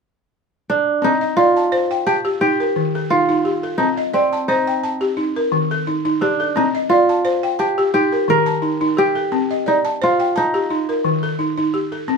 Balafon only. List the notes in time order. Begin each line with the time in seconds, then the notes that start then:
1.02 C4
1.21 D#5
1.38 D5
1.56 A5
1.72 C5
1.91 G5
2.07 A5
2.25 G4
2.41 D#4
2.60 A#4
2.76 D#3
2.95 A4
3.11 D#4
3.29 D#4
3.45 G4
3.63 A4
3.79 C4
3.97 D#5
4.14 D5
4.33 A5
4.49 C5
4.67 G5
4.83 A5
5.01 G4
5.17 D#4
5.36 A#4
5.52 D#3
5.71 A4
5.87 D#4
6.05 D#4
6.21 G4
6.40 A4
6.56 C4
6.75 D#5
6.91 D5
7.09 A5
7.25 C5
7.43 G5
7.59 A5
7.78 G4
7.94 D#4
8.12 A#4
8.28 D#3
8.46 A5
8.62 D#4
8.81 D#4
8.97 G4
9.15 A4
9.32 C4
9.51 D#5
9.66 D5
9.85 A5
10.02 C5
10.20 G5
10.36 A5
10.54 G4
10.70 D#4
10.89 A#4
11.05 D#3
11.23 A4
11.39 D#4
11.57 D#4
11.74 G4
11.92 A4
12.08 C4